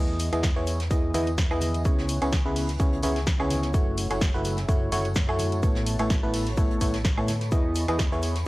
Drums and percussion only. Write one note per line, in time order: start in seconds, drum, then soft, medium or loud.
0.19 open hi-hat loud
0.19 tambourine medium
0.19 shaker medium
0.33 closed hi-hat medium
0.33 tambourine medium
0.33 high woodblock medium
0.43 kick loud
0.43 snare loud
0.43 closed hi-hat medium
0.43 tambourine soft
0.43 shaker medium
0.57 closed hi-hat soft
0.67 open hi-hat loud
0.67 tambourine loud
0.67 shaker medium
0.80 snare soft
0.80 closed hi-hat medium
0.80 tambourine medium
0.91 kick loud
0.91 closed hi-hat medium
0.91 tambourine soft
0.91 shaker medium
1.14 open hi-hat loud
1.14 tambourine medium
1.14 high conga medium
1.14 shaker medium
1.27 closed hi-hat medium
1.27 tambourine medium
1.38 kick loud
1.38 snare loud
1.38 closed hi-hat medium
1.38 shaker medium
1.51 high woodblock medium
1.61 open hi-hat loud
1.61 tambourine medium
1.61 high conga medium
1.61 shaker medium
1.74 closed hi-hat medium
1.74 tambourine medium
1.84 kick loud
1.84 closed hi-hat medium
1.84 tambourine soft
1.84 shaker medium
1.98 snare medium
2.09 open hi-hat loud
2.09 tambourine medium
2.09 shaker medium
2.22 closed hi-hat medium
2.22 tambourine medium
2.22 high woodblock medium
2.32 kick loud
2.32 snare loud
2.32 closed hi-hat medium
2.32 shaker medium
2.56 open hi-hat loud
2.56 open hi-hat medium
2.56 tambourine medium
2.69 snare soft
2.69 closed hi-hat medium
2.69 tambourine medium
2.79 kick loud
2.79 closed hi-hat medium
2.79 tambourine soft
2.79 shaker medium
2.93 closed hi-hat soft
3.02 open hi-hat loud
3.02 tambourine loud
3.02 high conga medium
3.02 shaker medium
3.16 snare medium
3.16 closed hi-hat medium
3.16 tambourine medium
3.27 kick loud
3.27 snare loud
3.27 closed hi-hat medium
3.27 shaker medium
3.40 high woodblock medium
3.50 snare soft
3.50 open hi-hat loud
3.50 tambourine loud
3.50 high conga medium
3.50 shaker medium
3.63 snare soft
3.63 closed hi-hat medium
3.63 tambourine medium
3.74 kick loud
3.74 closed hi-hat medium
3.74 tambourine soft
3.74 shaker medium
3.97 open hi-hat loud
3.97 tambourine medium
3.97 shaker medium
4.11 closed hi-hat medium
4.11 tambourine medium
4.11 high woodblock medium
4.21 kick loud
4.21 snare loud
4.21 closed hi-hat medium
4.21 shaker medium
4.34 closed hi-hat soft
4.45 open hi-hat loud
4.45 tambourine loud
4.45 shaker medium
4.57 snare soft
4.57 closed hi-hat medium
4.57 tambourine soft
4.69 kick loud
4.69 closed hi-hat medium
4.69 tambourine soft
4.69 shaker medium
4.92 open hi-hat loud
4.92 tambourine medium
4.92 high conga medium
4.92 shaker medium
5.05 closed hi-hat medium
5.05 tambourine soft
5.15 kick loud
5.15 snare loud
5.15 closed hi-hat medium
5.15 tambourine soft
5.15 shaker medium
5.29 high woodblock medium
5.39 open hi-hat loud
5.39 tambourine loud
5.39 high conga medium
5.39 shaker medium
5.52 closed hi-hat medium
5.52 tambourine medium
5.63 kick loud
5.63 closed hi-hat medium
5.63 tambourine soft
5.63 shaker medium
5.75 snare soft
5.86 open hi-hat loud
5.86 tambourine medium
5.86 shaker medium
5.99 closed hi-hat medium
5.99 tambourine soft
5.99 high woodblock medium
6.10 kick loud
6.10 snare loud
6.10 closed hi-hat soft
6.10 tambourine soft
6.10 shaker medium
6.34 open hi-hat loud
6.34 open hi-hat medium
6.34 tambourine loud
6.47 snare soft
6.47 closed hi-hat medium
6.47 tambourine soft
6.57 kick loud
6.57 closed hi-hat soft
6.57 tambourine soft
6.57 shaker medium
6.71 closed hi-hat soft
6.81 kick medium
6.81 open hi-hat loud
6.81 tambourine loud
6.81 high conga medium
6.81 shaker medium
6.94 snare medium
6.94 closed hi-hat medium
6.94 tambourine soft
7.04 kick loud
7.04 snare loud
7.04 closed hi-hat soft
7.04 shaker medium
7.17 high woodblock medium
7.28 snare soft
7.28 open hi-hat loud
7.28 tambourine medium
7.28 high conga medium
7.28 shaker medium
7.41 snare soft
7.41 closed hi-hat medium
7.41 tambourine medium
7.51 kick loud
7.51 closed hi-hat medium
7.51 tambourine soft
7.51 shaker medium
7.75 open hi-hat loud
7.75 tambourine medium
7.75 shaker medium
7.88 closed hi-hat medium
7.88 tambourine medium
7.88 high woodblock medium
7.99 kick loud
7.99 snare loud
7.99 closed hi-hat medium
7.99 tambourine soft
7.99 shaker loud
8.12 closed hi-hat soft
8.22 open hi-hat loud
8.22 tambourine medium
8.22 shaker medium
8.35 snare soft
8.35 closed hi-hat medium
8.35 tambourine medium